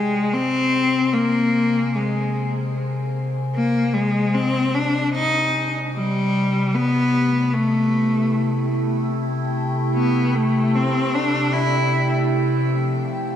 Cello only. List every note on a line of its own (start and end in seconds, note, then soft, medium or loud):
0.00 0.35 G#3 medium
0.33 1.15 C4 loud
1.13 1.97 A#3 medium
1.95 2.55 G#3 medium
3.55 3.95 A#3 loud
3.94 4.36 G#3 medium
4.35 4.76 C4 medium
4.75 5.14 D4 medium
5.15 5.71 D#4 loud
5.94 6.76 G3 medium
6.75 7.56 B3 medium
7.54 8.75 A3 medium
9.95 10.37 B3 medium
10.35 10.77 A3 medium
10.75 11.16 C4 medium
11.15 11.55 D4 medium
11.53 12.14 E4 medium